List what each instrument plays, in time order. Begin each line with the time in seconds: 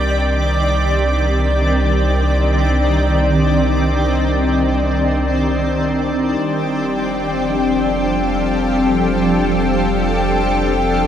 Already playing: sub bass C2, ambient pad D#3 C4 G4 D5, synth drone G3 D4
6.41 sub bass F1, ambient pad F3, violin section G4 G5
6.96 ambient pad A4